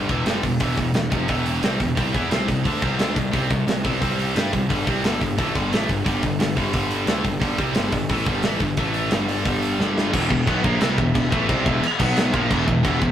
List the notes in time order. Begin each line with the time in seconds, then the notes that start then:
0.09 E1 E2 B2 E3, kick, open hi-hat
0.26 G1 G2 D3 G3, snare, open hi-hat
0.43 E1 E2 B2, kick, open hi-hat
0.60 E1 E2 B2 E3, kick, open hi-hat
0.77 E1 E2 B2, kick, open hi-hat
0.94 E1 E2 B2, snare, open hi-hat
1.11 F1 F2 C3 F3, kick, open hi-hat
1.28 E1 E2 B2 E3, kick, open hi-hat
1.46 open hi-hat
1.63 C2 C3 G3 C4, snare, open hi-hat
1.80 E1 E2 B2, kick, open hi-hat
1.97 C2 C3 G3 C4, kick, open hi-hat
2.14 E2 E3 B3 E4, kick, open hi-hat
2.31 C2 C3 G3 C4, snare, open hi-hat
2.48 C2 C3 G3, kick, open hi-hat
2.65 D2 D3 A3 D4, kick, open hi-hat
2.82 C2 C3 G3 C4, kick, open hi-hat
2.99 D2 D3 A3 D4, snare, open hi-hat
3.16 C2 C3 G3, kick, open hi-hat
3.32 C2 C3 G3 C4, kick, open hi-hat
3.49 C2 C3 G3, kick, open hi-hat
3.67 C2 C3 G3, snare, open hi-hat
3.84 C2 C3 G3 C4, kick, open hi-hat
4.01 C2 C3 G3 C4, kick, open hi-hat
4.19 open hi-hat
4.35 G2 G3 D4 G4, snare, open hi-hat
4.52 C2 C3 G3, kick, open hi-hat
4.70 G1 G2 D3 G3, kick, open hi-hat
4.87 C2 C3 G3 C4, kick, open hi-hat
5.03 G1 G2 D3 G3, snare, open hi-hat
5.21 G1 G2 D3, kick, open hi-hat
5.38 A1 A2 E3 A3, kick, open hi-hat
5.54 G1 G2 D3 G3, kick, open hi-hat
5.71 A1 A2 E3 A3, snare, open hi-hat
5.89 G1 G2 D3, kick, open hi-hat
6.05 G1 G2 D3 G3, kick, open hi-hat
6.22 G1 G2 D3, kick, open hi-hat
6.39 G1 G2 D3, snare, open hi-hat
6.56 G1 G2 D3 G3, kick, open hi-hat
6.73 G1 G2 D3 G3, kick, open hi-hat
6.91 open hi-hat
7.07 D2 D3 A3 D4, snare, open hi-hat
7.24 G1 G2 D3, kick, open hi-hat
7.41 G1 G2 D3 G3, kick, open hi-hat
7.58 C2 C3 G3 C4, kick, open hi-hat
7.75 G1 G2 D3 G3, snare, open hi-hat
7.92 G1 G2 D3, kick, open hi-hat
8.09 A1 A2 E3 A3, kick, open hi-hat
8.26 G1 G2 D3 G3, kick, open hi-hat
8.43 A1 A2 E3 A3, snare, open hi-hat
8.60 G1 G2 D3, kick, open hi-hat
8.77 A1 A2 E3 A3, kick, open hi-hat
8.94 open hi-hat
9.11 G1 G2 D3 G3, snare, open hi-hat
9.29 open hi-hat
9.45 G1 G2 D3 G3, kick, open hi-hat
9.62 open hi-hat
9.79 G1 G2 D3 G3, snare
9.98 snare
10.13 E1 E2 B2 E3 B3 G4 E5, kick, crash, china
10.30 E1 E2 B2, kick
10.46 B1 B2 F#3 B3, kick, china
10.64 A#1 A#2 F3 A#3, kick
10.80 C2 C3 G3 C4, snare, china
10.97 E1 E2 B2, kick
11.15 E1 E2 B2, kick, china
11.31 A1 A2 E3 A3, kick
11.49 C2 C3 G3 C4, kick, china
11.66 E1 E2 B2 E3, kick
11.82 muted overdriven electric guitar stroke, muted picked electric bass stroke, muted distorted electric guitar stroke, china
11.99 B1 B2 F#3 B3 F#4 F#5, kick, crash
12.17 snare, china
12.33 A#1 A#2 F3 A#3 G4 E5, kick
12.50 E1 E2 B2 E3, kick, china
12.67 E1 E2 B2, kick
12.83 E1 E2 B2 E3, kick, china
13.00 E1 E2 B2, kick